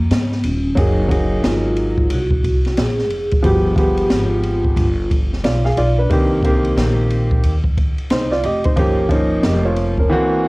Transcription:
0.11 upright bass G#2, vibraphone B3, snare, hi-hat pedal, ride
0.32 snare
0.44 upright bass D#1, vibraphone C#4, ride
0.75 upright bass F#1, upright piano F#3 A#3 D#4 G#4, vibraphone D#4, kick, ride
1.08 upright piano F#3 A#3 D#4 G#4, kick, ride
1.44 upright bass G#1, vibraphone F4, snare, hi-hat pedal, ride
1.76 ride
1.98 kick
2.10 upright bass C2, vibraphone F#4, ride
2.31 kick
2.44 kick, ride
2.65 snare, ride
2.77 upright bass A#1, vibraphone G#4, snare, hi-hat pedal, ride
2.99 snare
3.10 upright bass F1, ride
3.31 kick, ride
3.41 upright bass G1, upright piano F3 G#3 B3, vibraphone F#4, kick, ride
3.45 upright piano G4, vibraphone G4
3.76 upright piano F3 G#3 B3 G4, kick, ride
3.97 ride
4.10 upright bass G#1, vibraphone F4, snare, hi-hat pedal, ride
4.43 ride
4.65 kick
4.76 upright bass G1, kick, ride
5.11 kick, ride
5.33 snare
5.43 upright bass B1, upright piano F4 D5, snare, hi-hat pedal, ride
5.65 upright piano G#4 F5, snare
5.77 upright bass B1, upright piano F4 D5, ride
5.98 upright piano D4 B4
6.10 upright bass C2, upright piano D#3 A#3 C4 G4, kick, ride
6.43 upright piano D3 A#3 C4 G4, kick, ride
6.49 upright piano D#3
6.65 ride
6.77 upright bass A#1, snare, hi-hat pedal, ride
7.10 ride
7.31 kick
7.43 upright bass D#2, ride
7.64 kick
7.78 kick, ride
7.97 muted upright bass stroke, ride
8.10 upright bass C2, upright piano D#4 C5, snare, hi-hat pedal, ride
8.32 upright piano F4 D5, snare
8.43 upright bass F1, upright piano G4 D#5, ride
8.64 upright piano D#4 C5, kick, ride
8.76 upright bass G1, upright piano F3 A#3 C#4 G4, kick, ride
9.09 upright piano F3 A#3 C#4 D#4, kick, ride
9.43 upright bass F1, upright piano G4 D#5, snare, hi-hat pedal, ride
9.65 upright piano F4 C#5
9.76 ride
9.98 upright piano C#4 A#4, kick
10.10 upright piano E3 A#3 C4 F#4

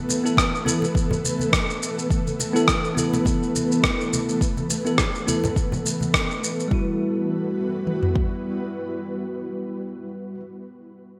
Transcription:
Already playing: ambient pad E3 A3 B3 A4 B4, tine electric piano B3 E4 A4
0.09 muted conga, shaker
0.24 tine electric piano B3 E4 A4, shaker
0.37 kick, cross-stick, shaker
0.55 shaker
0.65 tine electric piano B3 E4 A4, muted conga, high conga, shaker
0.82 muted conga, shaker
0.95 kick, shaker
1.11 high conga, low conga, shaker
1.24 high conga, shaker
1.39 high conga, shaker
1.53 kick, cross-stick, shaker
1.70 shaker
1.83 shaker
1.99 shaker
2.10 kick, shaker
2.27 high conga, shaker
2.40 muted conga, shaker
2.54 tine electric piano B3 E4 A4, shaker
2.68 kick, cross-stick, shaker
2.85 shaker
2.95 tine electric piano B3 E4 A4, high conga, shaker
3.14 muted conga, shaker
3.25 kick, high conga, shaker
3.43 shaker
3.56 high conga, shaker
3.72 shaker
3.83 kick, cross-stick, shaker
4.01 shaker
4.13 high conga, shaker
4.29 shaker
4.41 kick, shaker
4.57 high conga, shaker
4.70 muted conga, shaker
4.85 tine electric piano B3 E4 A4, shaker
4.98 kick, cross-stick, shaker
5.15 shaker
5.27 tine electric piano B3 E4 A4, muted conga, high conga, shaker
5.44 muted conga, low conga, shaker
5.56 kick, shaker
5.72 high conga, low conga, shaker
5.85 high conga, shaker
6.01 high conga, shaker
6.14 kick, cross-stick, shaker
6.31 shaker
6.44 shaker
6.60 shaker
6.68 tine electric piano G3 E4, ambient pad G3 B3 E4 F#4 B4, kick
6.74 tine electric piano F#4
7.87 mid tom
8.03 floor tom
8.16 kick

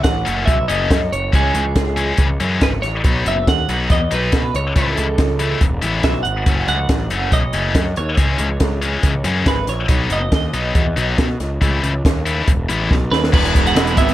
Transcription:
0.04 picked electric bass A1, clean electric guitar F#5, kick, snare, closed hi-hat
0.25 picked electric bass F#1, distorted electric guitar C#3 F#3 A3 C#4, closed hi-hat
0.46 picked electric bass B1, clean electric guitar E5, kick, closed hi-hat
0.68 picked electric bass F#1, distorted electric guitar C#3 F#3 A3 C#4, clean electric guitar D#5, closed hi-hat
0.90 picked electric bass F#2, kick, snare, closed hi-hat
1.12 picked electric bass F#1, clean electric guitar C#5, closed hi-hat
1.33 picked electric bass C#2, distorted electric guitar C#3 E3 G#3 C#4, clean electric guitar G#4, kick, closed hi-hat
1.54 picked electric bass C#2, closed hi-hat
1.76 picked electric bass C#2, kick, snare, closed hi-hat
1.97 distorted electric guitar C#3 E3 G#3 C#4, closed hi-hat
2.17 picked electric bass C#2, kick, closed hi-hat
2.40 picked electric bass F#2, distorted electric guitar C#3 E3 G#3 C#4, closed hi-hat
2.61 picked electric bass G#1, clean electric guitar B4, kick, snare, closed hi-hat
2.82 picked electric bass A1, clean electric guitar C#5, snare, closed hi-hat
3.04 picked electric bass B1, distorted electric guitar B2 F#3 B3 D#4, kick, closed hi-hat
3.25 picked electric bass F#1, clean electric guitar E5, closed hi-hat
3.47 picked electric bass D#2, clean electric guitar F#5, kick, snare, closed hi-hat
3.68 picked electric bass B1, distorted electric guitar B2 F#3 B3 D#4, closed hi-hat
3.90 picked electric bass E2, clean electric guitar D#5, kick, closed hi-hat
4.11 picked electric bass B1, distorted electric guitar B2 F#3 B3 D#4, clean electric guitar B4, closed hi-hat
4.32 picked electric bass B2, kick, snare, closed hi-hat
4.54 picked electric bass C#2, clean electric guitar C#5, closed hi-hat
4.76 picked electric bass C#2, distorted electric guitar C#3 E3 A3 E4, clean electric guitar A4, kick, closed hi-hat
4.97 picked electric bass C#2, closed hi-hat
5.18 picked electric bass C#2, kick, snare, closed hi-hat
5.39 distorted electric guitar C#3 E3 A3 E4, closed hi-hat
5.61 picked electric bass E1, kick, closed hi-hat
5.82 picked electric bass A1, distorted electric guitar E3 G#3 B3 E4, closed hi-hat
6.03 picked electric bass B1, clean electric guitar E5, kick, snare, closed hi-hat
6.23 picked electric bass G#1, clean electric guitar F#5, closed hi-hat
6.46 picked electric bass F#1, distorted electric guitar C#3 F#3 A3 C#4, kick, closed hi-hat
6.68 picked electric bass C#2, clean electric guitar F#5, closed hi-hat
6.89 picked electric bass A1, kick, snare, closed hi-hat
7.10 picked electric bass F#1, distorted electric guitar C#3 F#3 A3 C#4, closed hi-hat
7.32 picked electric bass B1, clean electric guitar D#5, kick, closed hi-hat
7.53 picked electric bass F#1, distorted electric guitar C#3 F#3 A3 C#4, closed hi-hat
7.75 picked electric bass F#2, kick, snare, closed hi-hat
7.96 picked electric bass D#2, clean electric guitar C#5, closed hi-hat
8.17 picked electric bass C#2, distorted electric guitar C#3 E3 G#3 C#4, kick, closed hi-hat
8.38 picked electric bass C#2, closed hi-hat
8.60 picked electric bass C#2, kick, snare, closed hi-hat
8.82 distorted electric guitar C#3 E3 G#3 C#4, closed hi-hat
9.03 picked electric bass C#2, kick, closed hi-hat
9.24 picked electric bass F#2, distorted electric guitar C#3 E3 G#3 C#4, closed hi-hat
9.46 picked electric bass G#1, clean electric guitar B4, kick, snare, closed hi-hat
9.67 picked electric bass A#1, clean electric guitar C#5, snare, closed hi-hat
9.89 picked electric bass B1, distorted electric guitar B2 F#3 B3 D#4, kick, closed hi-hat
10.10 picked electric bass F#1, clean electric guitar D#5, closed hi-hat
10.32 picked electric bass D#2, clean electric guitar D#5, kick, snare, closed hi-hat
10.53 picked electric bass B1, distorted electric guitar B2 F#3 B3 D#4, closed hi-hat
10.75 picked electric bass E2, kick, closed hi-hat
10.97 picked electric bass B1, distorted electric guitar B2 F#3 B3 D#4, closed hi-hat
11.18 picked electric bass B2, kick, snare, closed hi-hat
11.40 picked electric bass C#2, snare, closed hi-hat
11.61 picked electric bass C#2, distorted electric guitar C#3 E3 A3 E4, kick, closed hi-hat
11.83 picked electric bass C#2, closed hi-hat
12.05 picked electric bass D#2, kick, snare, closed hi-hat
12.26 distorted electric guitar C#3 E3 A3 E4, closed hi-hat
12.48 picked electric bass E1, kick, closed hi-hat
12.69 picked electric bass A1, distorted electric guitar E3 G#3 B3 E4, closed hi-hat
12.91 picked electric bass B1, kick, snare
13.11 picked electric bass D#2, clean electric guitar B4, snare
13.24 snare
13.33 picked electric bass E1, distorted electric guitar E2 B2 E3 G#3 B3 E4, clean electric guitar B4, kick, crash
13.45 closed hi-hat
13.55 kick, closed hi-hat
13.66 clean electric guitar F#5, closed hi-hat
13.75 picked electric bass E1, distorted electric guitar E2 B2 E3 G#3 B3 E4, snare, closed hi-hat
13.87 closed hi-hat
13.97 picked electric bass G#1, distorted electric guitar E2 B2 E3 G#3 B3 E4, clean electric guitar E5, kick, closed hi-hat
14.09 closed hi-hat

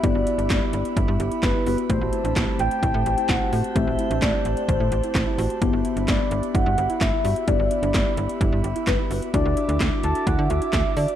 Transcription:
Already playing: glass harmonica G4 E5 B5
0.03 fm bass G1, synth keys B3 E4 G4, soft synth lead D5, kick, closed hi-hat
0.15 fm bass G1, synth arpeggio sound F#4
0.27 synth arpeggio sound E4, closed hi-hat
0.38 fm bass G1, synth arpeggio sound D4, closed hi-hat
0.50 fm bass G1, synth arpeggio sound E4, kick, snare, clap, closed hi-hat
0.62 synth arpeggio sound E4
0.73 fm bass G1, closed hi-hat
0.85 closed hi-hat
0.97 fm bass G1, synth arpeggio sound E4, kick, closed hi-hat
1.08 fm bass G2
1.20 fm bass G1, synth arpeggio sound G4, closed hi-hat
1.31 synth arpeggio sound E4, closed hi-hat
1.43 fm bass G1, soft synth lead B4, kick, snare, clap, closed hi-hat
1.55 synth arpeggio sound E4
1.66 fm bass G1, synth keys B3 E4 G4, synth arpeggio sound F#4, soft synth lead B4, open hi-hat
1.78 closed hi-hat
1.90 fm bass A1, synth keys A3 C4 G4, soft synth lead C5, glass harmonica C5 A5, kick, closed hi-hat
2.01 fm bass A1, synth arpeggio sound F#4
2.13 synth arpeggio sound E4, closed hi-hat
2.24 fm bass A1, synth arpeggio sound D4, closed hi-hat
2.36 fm bass A1, synth arpeggio sound E4, kick, snare, clap, closed hi-hat
2.48 synth arpeggio sound E4
2.59 fm bass A1, soft synth lead G5, closed hi-hat
2.71 closed hi-hat
2.83 fm bass A1, synth arpeggio sound E4, kick, closed hi-hat
2.94 fm bass A2
3.06 fm bass A1, synth arpeggio sound G4, closed hi-hat
3.18 synth arpeggio sound E4, closed hi-hat
3.29 fm bass A1, soft synth lead F#5, kick, snare, clap, closed hi-hat
3.41 synth arpeggio sound E4
3.53 fm bass A2, synth arpeggio sound F#4, open hi-hat
3.64 closed hi-hat
3.76 fm bass A1, synth keys A3 C4 G4, soft synth lead E5, kick, closed hi-hat
3.87 fm bass A1, synth arpeggio sound F#4
3.99 synth arpeggio sound E4, closed hi-hat
4.11 fm bass A1, synth arpeggio sound D4, closed hi-hat
4.22 fm bass A1, synth arpeggio sound E4, soft synth lead D5, kick, snare, clap, closed hi-hat
4.34 synth arpeggio sound E4
4.45 fm bass A1, closed hi-hat
4.57 closed hi-hat
4.69 fm bass A1, synth arpeggio sound E4, soft synth lead C5, kick, closed hi-hat
4.80 fm bass A2
4.92 fm bass A1, synth arpeggio sound G4, closed hi-hat
5.03 synth arpeggio sound E4, closed hi-hat
5.15 fm bass A1, kick, snare, clap, closed hi-hat
5.27 synth arpeggio sound E4
5.38 fm bass A1, synth arpeggio sound F#4, open hi-hat
5.50 closed hi-hat
5.61 fm bass G1, synth keys B3 E4 G4, glass harmonica E5 B5, kick, closed hi-hat
5.73 fm bass G1, synth arpeggio sound F#4
5.85 synth arpeggio sound E4, closed hi-hat
5.96 fm bass G1, synth arpeggio sound D4, closed hi-hat
6.08 fm bass G1, synth arpeggio sound E4, soft synth lead D5, kick, snare, clap, closed hi-hat
6.20 synth arpeggio sound E4
6.31 fm bass G1, closed hi-hat
6.43 closed hi-hat
6.55 fm bass G1, synth arpeggio sound E4, soft synth lead F#5, kick, closed hi-hat
6.66 fm bass G2
6.78 fm bass G1, synth arpeggio sound G4, closed hi-hat
6.90 synth arpeggio sound E4, closed hi-hat
7.01 fm bass G1, soft synth lead E5, kick, snare, clap, closed hi-hat
7.13 synth arpeggio sound E4
7.24 fm bass G2, synth arpeggio sound F#4, open hi-hat
7.36 closed hi-hat
7.48 fm bass G1, synth keys B3 E4 G4, soft synth lead D5, kick, closed hi-hat
7.59 fm bass G1, synth arpeggio sound F#4
7.71 synth arpeggio sound E4, closed hi-hat
7.83 fm bass G1, synth arpeggio sound D4, closed hi-hat
7.94 fm bass G1, synth arpeggio sound E4, kick, snare, clap, closed hi-hat
8.06 synth arpeggio sound E4
8.17 fm bass G1, closed hi-hat
8.29 closed hi-hat
8.41 fm bass G1, synth arpeggio sound E4, kick, closed hi-hat
8.52 fm bass G2
8.64 fm bass G1, synth arpeggio sound G4, closed hi-hat
8.76 synth arpeggio sound E4, closed hi-hat
8.87 fm bass G1, soft synth lead B4, kick, snare, clap, closed hi-hat
8.99 synth arpeggio sound E4
9.10 fm bass G1, synth arpeggio sound F#4, soft synth lead B4, open hi-hat
9.22 closed hi-hat
9.34 fm bass D2, synth keys D4 E4 F#4, glass harmonica F#4 D6, soft synth lead D5, kick, closed hi-hat
9.45 fm bass D2, synth arpeggio sound F#4
9.57 synth arpeggio sound E4, closed hi-hat
9.69 fm bass D2, synth arpeggio sound D4, closed hi-hat
9.80 fm bass D2, synth arpeggio sound E4, kick, snare, clap, closed hi-hat
9.92 synth arpeggio sound E4
10.03 fm bass D2, soft synth lead A5, closed hi-hat
10.15 closed hi-hat
10.27 fm bass D2, synth arpeggio sound E4, soft synth lead F#5, kick, closed hi-hat
10.39 fm bass D3
10.50 fm bass D2, synth arpeggio sound F#4, soft synth lead E5, closed hi-hat
10.62 synth arpeggio sound E4, closed hi-hat
10.73 fm bass D2, kick, snare, clap, closed hi-hat
10.85 synth arpeggio sound E4
10.97 fm bass D3, synth arpeggio sound F#4, soft synth lead D5, open hi-hat
11.08 closed hi-hat

